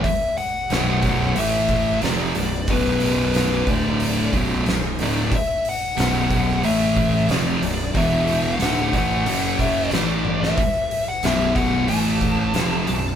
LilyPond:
<<
  \new Staff \with { instrumentName = "Lead electric guitar" } { \time 4/4 \key b \minor \tempo 4 = 91 e''8 fis''4. e''4 d''4 | b'8. b'8. d''4 r4 d''8 | e''8 fis''4. e''4 d''4 | e''8. fis''8. fis''4 e''16 d''4 e''16~ |
e''8. fis''16 e''8 fis''8 a''4. a''8 | }
  \new Staff \with { instrumentName = "Distorted electric guitar" } { \clef bass \time 4/4 \key b \minor r4 <b,, fis, b,>4 <a, e a>4 <eis, c eis>8 <b,, fis,>8 | <b,, fis, b,>4. <d, a, d>4 <b,, fis, b,>8 <b,, fis,>8 <d, a, d>8 | r4 <b,, fis, b,>4 <a, e a>4 <eis, c eis>8 <b,, fis,>8 | <e, b, e>4 <d, a, d>8 <a, e a>8 <fis, cis fis>4 <a, e a>4 |
r4 <b,, fis, b,>4 <a, e a>4 <eis, c eis>8 <b,, fis,>8 | }
  \new Staff \with { instrumentName = "Fingered electric bass" } { \clef bass \time 4/4 \key b \minor r4 b,,,4 a,,4 eis,,8 b,,,8 | b,,,4. d,,4 b,,,8 b,,,8 d,,8 | r4 b,,,4 a,,4 eis,,8 b,,,8 | e,,4 d,,8 a,,8 fis,,4 a,,4 |
r4 b,,,4 a,,4 eis,,8 b,,,8 | }
  \new DrumStaff \with { instrumentName = "Drums" } \drummode { \time 4/4 <hho bd>8 hho8 <hho sn>8 <hho bd>8 hho8 <hho bd>8 <hho sn>8 hho8 | <hho bd>8 hho8 <hho sn>8 <hho bd>8 hho8 <hho bd>8 <hho sn>8 hho8 | <hho bd>8 hho8 <hho sn>8 <hho bd>8 hho8 <hho bd>8 <hho sn>8 hho8 | <hho bd>8 hho8 <hho sn>8 <hho bd>8 hho8 <hho bd>8 <hho sn>8 tommh16 sn16 |
<hho bd>8 hho8 <hho sn>8 <hho bd>8 hho8 <hho bd>8 <hho sn>8 hho8 | }
>>